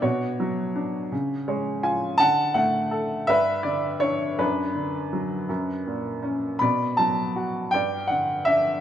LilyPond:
<<
  \new Staff \with { instrumentName = "Upright piano" } { \time 6/8 \key b \minor \tempo 4. = 55 << { cis''2~ cis''8 r8 | a''8 fis''4 e''8 d''8 cis''8 | b'2~ b'8 r8 | b''8 a''4 g''8 fis''8 e''8 | } \\ { fis'2~ fis'8 r8 | fis''4. b'4. | d'2~ d'8 r8 | d''4. d''4. | } >> }
  \new Staff \with { instrumentName = "Upright piano" } { \clef bass \time 6/8 \key b \minor b,8 fis8 d'8 cis8 <gis cis''>8 <eis' gis''>8 | d8 a8 a'8 g,8 d8 d'8 | fis,8 d8 fis8 fis,8 ais,8 cis'8 | b,8 fis8 fis'8 g,8 d8 d'8 | }
>>